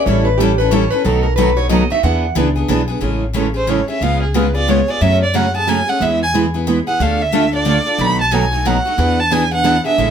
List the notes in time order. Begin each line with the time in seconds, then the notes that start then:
0.06 A1 E3 G3 C#4 E4 A4 C#5
0.25 B4
0.37 E3 G3 C#4 E4 G4 A4
0.58 C#4 E4 A4 B4
0.71 E3 G3 C#4 E4 A4 C#5
0.91 C#4 E4 A4 B4
1.04 B1 B2 D#3 F#3 A3 B3 D#4 F#4 A4
1.23 A#4
1.36 B2 D#3 F#3 A3 B3 D#4 F#4 A4 B4
1.57 A3 D#4 F#4 C#5
1.69 B2 D#3 F#3 A3 B3 D#4 F#4 A4 D#5
1.90 A3 D#4 F#4 E5
2.03 E2 E3 B3 D4 G#4 B4 F#5
2.35 C#2 E3 B3 D4 G#4 B4
2.56 B3 D4 G#4
2.68 B1 E3 B3 D4 G#4 B4
2.88 B3 D4 G#4
3.01 A1 C#3 E3 G#3 A3 C#4 E4 G#4 A4
3.33 C#3 E3 G#3 A3 C#4 E4 G#4 A4
3.54 A3 C#4 G#4 C5
3.67 C#3 E3 G#3 A3 C#4 E4 G#4 A4 C#5
3.88 A3 C#4 G#4 E5
4.01 C#2 C#3 G#3 B3 F4 G#4 F5
4.22 G#4
4.34 C#3 G#3 B3 F4 G#4 B4
4.55 B3 F4 G#4 D5
4.68 C#3 G#3 B3 F4 G#4 C#5
4.88 B3 F4 G#4 D5
5.01 F#2 C#3 F#3 A3 C#4 G#4 E5
5.23 D5
5.34 C#3 F#3 A3 C#4 G#4 F#5
5.54 A3 C#4 G#4 A5
5.67 C#3 F#3 A3 C#4 G#4 G#5
5.88 A3 C#4 G#4 F#5
6.00 E2 E3 G#3 B3 E4 G#4 E5
6.23 G#5
6.34 E3 G#3 B3 E4 G#4
6.54 B3 E4 G#4
6.67 E3 G#3 B3 E4 G#4
6.87 B3 E4 G#4 F#5
7.00 D2 D3 A3 D4 F4 A4 F5
7.22 E5
7.32 D3 A3 D4 F4 A4
7.52 D4 F4 A4 D5
7.65 D3 A3 D4 F4 A4
7.86 D4 F4 A4
7.98 B1 B2 D#3 F#3 A3 B3 D#4 F#4 A4 B5
8.21 A5
8.31 B2 D#3 F#3 A3 B3 D#4 F#4 A4 G#5
8.52 A3 D#4 F#4
8.65 B2 D#3 F#3 A3 B3 D#4 F#4 A4 F#5
8.85 A3 D#4 F#4
8.98 E2 E3 B3 D4 G#4 B4
9.20 A5
9.31 E3 B3 D4 G#4 B4 G#5
9.51 B3 D4 G#4 F#5
9.64 E3 B3 D4 G#4 B4
9.85 B3 D4 G#4 E5
9.98 A1 C#3 E3 G#3 A3 C#4 E4 G#4 A4